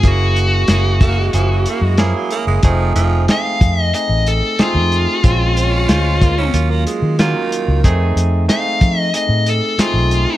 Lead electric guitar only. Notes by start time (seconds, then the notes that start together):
0.07 F#4
3.31 F5
3.81 D#5
3.95 D#5
4.28 A4
4.62 F4
8.50 F5
8.99 D#5
9.16 D#5
9.49 A4
9.80 F4